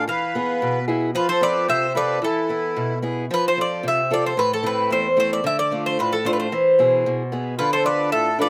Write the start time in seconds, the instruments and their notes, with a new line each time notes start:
0.08 steel-string acoustic guitar E3, accordion B4, bouzouki F5
0.35 steel-string acoustic guitar E3 B3 G#4
0.62 steel-string acoustic guitar B2
0.88 steel-string acoustic guitar B3 E4 G#4
1.15 steel-string acoustic guitar F3, accordion F4, bouzouki B4
1.29 accordion A4, bouzouki C5
1.41 steel-string acoustic guitar C4 F4 A4, accordion B4, bouzouki D5
1.67 steel-string acoustic guitar C3, accordion C5, bouzouki E5
1.94 steel-string acoustic guitar C4 F4 A4, accordion B4, bouzouki D5
2.22 steel-string acoustic guitar E3, accordion E4, bouzouki A4
2.49 steel-string acoustic guitar B3 E4 B4
2.76 steel-string acoustic guitar B2
3.02 steel-string acoustic guitar B3 E4 G#4
3.31 steel-string acoustic guitar F3, bouzouki B4
3.48 bouzouki C5
3.57 steel-string acoustic guitar C4 F4 A4
3.61 bouzouki D5
3.83 steel-string acoustic guitar C3
3.88 bouzouki E5
4.10 steel-string acoustic guitar C4 F4 A4, bouzouki D5
4.26 bouzouki C5
4.37 steel-string acoustic guitar A2, bouzouki B4
4.53 bouzouki A4
4.63 steel-string acoustic guitar A3 C4 E4, bouzouki B4
4.90 steel-string acoustic guitar E2, bouzouki C5
5.17 steel-string acoustic guitar A3 C4 E4, bouzouki C5
5.33 bouzouki D5
5.44 steel-string acoustic guitar D3, bouzouki E5
5.59 bouzouki D5
5.71 steel-string acoustic guitar A3 D4 F4
5.86 bouzouki C5
5.99 steel-string acoustic guitar A2, bouzouki B4
6.13 bouzouki A4
6.25 steel-string acoustic guitar A3 D4 F4, bouzouki C5
6.33 bouzouki B4
6.40 bouzouki C5
6.52 steel-string acoustic guitar E3
6.79 steel-string acoustic guitar B2 E4 G#4
7.06 steel-string acoustic guitar B2
7.32 steel-string acoustic guitar B3 E4 G#4
7.57 steel-string acoustic guitar D3, accordion F4, bouzouki B4
7.72 accordion A4, bouzouki C5
7.85 steel-string acoustic guitar D4 F4 A4, accordion B4, bouzouki D5
8.12 steel-string acoustic guitar A2, accordion A4, bouzouki E5
8.39 steel-string acoustic guitar D4 F4 A4, accordion B4, bouzouki D5